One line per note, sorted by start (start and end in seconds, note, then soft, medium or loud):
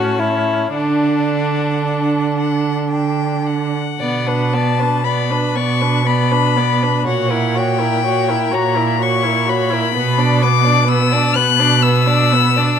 0.00 0.75 A2 soft
0.00 0.75 C#4 soft
0.00 0.20 F#4 medium
0.00 0.76 A5 soft
0.18 0.73 E4 soft
0.74 3.77 D3 soft
0.74 2.35 D4 soft
0.74 3.76 D4 soft
0.74 2.36 F#5 soft
2.38 2.89 F#5 soft
2.91 3.48 G5 soft
3.46 4.55 F#5 soft
4.00 5.38 B2 medium
4.00 4.29 B3 soft
4.00 4.29 D5 soft
4.27 4.55 D4 soft
4.27 4.55 B4 soft
4.54 4.83 B3 soft
4.54 4.81 D5 soft
4.54 5.06 A5 medium
4.80 5.05 D4 soft
4.80 5.05 B4 soft
5.04 5.32 B3 soft
5.04 5.33 D5 soft
5.04 5.57 B5 medium
5.31 5.57 D4 soft
5.31 5.58 B4 soft
5.56 6.89 B2 medium
5.56 5.83 B3 soft
5.56 5.82 D5 soft
5.56 6.08 C#6 medium
5.81 6.06 D4 soft
5.81 6.05 B4 soft
6.06 6.33 B3 soft
6.06 6.33 D5 soft
6.06 7.06 B5 medium
6.31 6.58 D4 soft
6.31 6.58 B4 soft
6.57 6.84 B3 soft
6.57 6.84 D5 soft
6.82 7.07 D4 soft
6.82 7.05 B4 soft
7.06 8.35 A#2 medium
7.06 7.32 F#4 soft
7.06 7.32 C#5 soft
7.06 7.59 F#5 medium
7.31 7.57 E4 soft
7.31 7.58 A#4 soft
7.55 7.80 F#4 soft
7.55 7.80 C#5 soft
7.55 8.55 G5 medium
7.79 8.03 E4 soft
7.79 8.04 A#4 soft
8.05 8.30 F#4 soft
8.05 8.31 C#5 soft
8.29 8.53 E4 soft
8.29 8.54 A#4 soft
8.52 9.79 A#2 medium
8.52 8.77 F#4 soft
8.52 8.77 C#5 soft
8.52 9.04 A#5 medium
8.75 8.99 E4 soft
8.75 9.00 A#4 soft
9.00 9.24 F#4 soft
9.00 9.26 C#5 soft
9.00 9.50 C#6 medium
9.23 9.48 E4 soft
9.23 9.51 A#4 soft
9.46 9.72 F#4 soft
9.46 9.74 C#5 soft
9.46 10.44 B5 medium
9.70 9.93 E4 soft
9.70 9.95 A#4 soft
9.93 11.20 B2 medium
9.93 10.19 B3 soft
9.93 10.20 B4 soft
10.18 10.44 D4 soft
10.18 10.44 D5 soft
10.42 10.68 B3 soft
10.42 10.66 B4 soft
10.42 10.89 D6 medium
10.64 10.89 D4 soft
10.64 10.86 D5 soft
10.87 11.15 B3 soft
10.87 11.13 B4 soft
10.87 11.37 E6 medium
11.12 11.38 D4 soft
11.12 11.37 D5 soft
11.35 12.64 B2 medium
11.35 11.61 B3 medium
11.35 11.62 B4 soft
11.35 11.83 F#6 medium
11.60 11.82 D4 soft
11.60 11.83 D5 soft
11.82 12.08 B3 soft
11.82 12.08 B4 soft
11.82 12.79 E6 medium
12.06 12.34 D4 soft
12.06 12.34 D5 soft
12.32 12.59 B3 medium
12.32 12.57 B4 soft
12.56 12.79 D4 soft
12.56 12.79 D5 soft